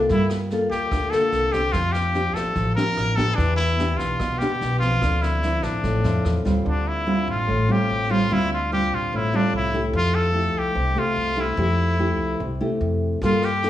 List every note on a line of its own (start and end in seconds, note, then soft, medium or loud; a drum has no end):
0.00 0.50 A#3 medium
0.00 0.51 F4 medium
0.00 0.52 A4 medium
0.09 0.71 G2 medium
0.09 0.90 G3 medium
0.09 0.30 E4 medium
0.09 kick medium
0.09 snare soft
0.30 cross-stick medium
0.30 snare soft
0.51 1.09 A#3 medium
0.51 1.10 F4 medium
0.51 1.10 A4 medium
0.51 snare soft
0.71 0.90 D2 medium
0.71 1.12 G4 medium
0.71 kick soft
0.71 snare soft
0.91 1.11 D2 medium
0.91 1.72 D3 medium
0.91 kick medium
0.91 cross-stick medium
0.91 snare soft
1.10 1.50 A#3 medium
1.10 1.51 F4 medium
1.10 1.54 A4 medium
1.10 1.51 A4 medium
1.10 snare soft
1.32 1.71 C2 medium
1.32 snare soft
1.52 2.12 C4 medium
1.52 2.12 D4 medium
1.52 1.74 G4 medium
1.52 2.12 G4 medium
1.52 kick soft
1.52 snare soft
1.72 2.35 F2 medium
1.72 2.54 F3 medium
1.72 1.94 F4 medium
1.72 kick medium
1.72 cross-stick medium
1.72 snare soft
1.92 2.36 G4 medium
1.92 snare soft
2.14 2.56 C4 medium
2.14 2.56 D4 medium
2.14 2.56 G4 medium
2.14 snare soft
2.34 2.54 A1 medium
2.34 2.75 A4 medium
2.34 kick soft
2.34 cross-stick medium
2.34 snare soft
2.56 2.75 A1 medium
2.56 3.36 F3 medium
2.56 kick medium
2.56 snare soft
2.76 3.15 C4 soft
2.76 3.14 D4 medium
2.76 3.15 G4 medium
2.76 3.17 A#4 medium
2.76 snare soft
2.97 3.35 A1 medium
2.97 cross-stick soft
2.97 snare soft
3.16 3.75 B3 medium
3.16 3.76 D4 medium
3.16 3.76 G4 medium
3.16 3.37 A4 loud
3.16 kick soft
3.16 snare soft
3.35 3.99 E2 medium
3.35 4.18 E3 medium
3.35 3.56 D4 medium
3.35 kick medium
3.35 snare soft
3.57 3.99 E4 medium
3.57 cross-stick soft
3.57 snare soft
3.79 4.37 B3 medium
3.79 4.37 D4 medium
3.79 4.38 G4 medium
3.79 snare soft
3.97 4.18 B1 medium
3.97 4.40 F4 medium
3.97 kick soft
3.97 snare soft
4.19 4.39 B1 medium
4.19 5.00 B2 medium
4.19 kick medium
4.19 cross-stick medium
4.19 snare soft
4.38 4.78 B3 soft
4.38 4.79 D4 medium
4.38 4.79 G4 medium
4.38 snare soft
4.61 4.99 B1 medium
4.61 snare soft
4.79 5.40 F3 medium
4.79 5.40 C4 medium
4.79 5.24 F4 medium
4.79 kick soft
4.79 snare soft
5.02 5.63 D2 medium
5.02 5.83 D3 medium
5.02 kick medium
5.02 cross-stick medium
5.02 snare soft
5.22 5.65 E4 medium
5.22 snare soft
5.43 6.01 F3 medium
5.43 6.01 C4 soft
5.43 6.02 E4 medium
5.43 snare soft
5.63 5.82 A1 medium
5.63 6.45 D4 medium
5.63 kick soft
5.63 cross-stick medium
5.63 snare soft
5.84 6.03 A1 medium
5.84 6.64 A2 medium
5.84 kick medium
5.84 snare soft
6.04 6.23 F2 medium
6.04 6.42 F3 medium
6.04 6.42 C4 medium
6.04 6.42 E4 medium
6.04 snare soft
6.25 6.43 E2 medium
6.25 cross-stick soft
6.25 snare soft
6.45 6.64 D2 medium
6.45 7.03 G3 medium
6.45 7.03 C4 medium
6.45 7.04 F4 medium
6.45 kick soft
6.45 snare soft
6.65 7.29 D2 medium
6.65 7.45 D3 medium
6.65 6.89 D4 medium
6.88 7.28 E4 medium
7.07 7.47 G3 medium
7.07 7.48 C4 medium
7.07 7.48 F4 medium
7.28 7.47 A1 medium
7.28 7.73 F4 medium
7.47 7.67 A1 medium
7.47 8.27 A2 medium
7.68 8.06 G3 soft
7.68 8.06 C4 medium
7.68 8.06 F4 medium
7.68 8.13 G4 medium
7.90 8.28 A1 medium
8.10 8.27 G3 medium
8.10 8.27 C4 medium
8.10 8.27 F4 medium
8.10 8.35 F4 medium
8.30 8.92 D2 medium
8.30 9.10 D3 medium
8.30 8.57 G3 medium
8.30 8.57 C4 medium
8.30 8.52 E4 medium
8.30 8.57 F4 medium
8.53 8.71 F4 medium
8.72 9.30 G3 medium
8.72 9.30 C4 medium
8.72 9.30 F4 medium
8.72 8.96 G4 medium
8.92 9.10 A1 medium
8.92 9.18 F4 medium
9.13 9.31 A1 medium
9.13 9.93 A2 medium
9.13 9.37 E4 medium
9.33 9.70 G3 medium
9.33 9.70 C4 medium
9.33 9.55 D4 medium
9.33 9.71 F4 medium
9.53 9.91 C2 medium
9.53 9.83 E4 medium
9.73 10.32 A3 medium
9.73 10.32 E4 medium
9.73 10.32 G4 medium
9.93 10.55 F2 medium
9.93 10.73 F3 soft
9.93 10.17 F4 medium
10.15 10.60 A4 medium
10.34 10.92 A3 soft
10.34 10.93 E4 medium
10.34 10.93 G4 medium
10.55 10.74 C2 medium
10.55 11.00 G4 medium
10.75 10.94 C2 medium
10.75 11.55 C3 medium
10.95 11.33 A3 medium
10.95 11.42 F4 medium
10.95 11.34 G4 medium
11.16 11.54 C2 medium
11.37 11.54 A3 medium
11.37 11.54 E4 medium
11.37 11.54 G4 medium
11.41 12.62 E4 medium
11.57 12.19 F2 medium
11.57 12.38 F3 medium
11.57 11.95 A3 medium
11.57 11.95 E4 medium
11.57 11.96 G4 medium
11.99 12.40 A3 medium
11.99 12.40 E4 medium
11.99 12.40 G4 medium
12.19 12.38 C2 medium
12.39 12.59 C2 medium
12.39 13.19 C3 medium
12.61 13.18 A3 medium
12.61 13.18 E4 medium
12.61 13.19 G4 medium
12.81 13.19 F2 medium
13.22 13.70 G2 medium
13.22 13.70 G3 soft
13.22 13.49 A#3 medium
13.22 13.49 F4 medium
13.22 13.46 F4 medium
13.22 13.49 A4 medium
13.22 kick medium
13.22 snare soft
13.42 13.70 G4 medium
13.42 cross-stick medium
13.42 snare soft
13.63 13.70 A#3 soft
13.63 13.70 F4 medium
13.63 13.70 A4 medium
13.63 snare soft